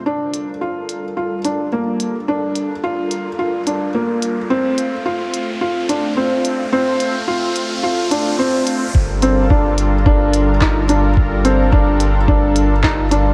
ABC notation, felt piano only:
X:1
M:4/4
L:1/8
Q:1/4=108
K:Gm
V:1 name="Felt piano"
D2 F2 F D B,2 | D2 F2 F D B,2 | C2 F2 F D C2 | C2 F2 F D C2 |
z C D2 D2 E D | z C D2 D2 E D |]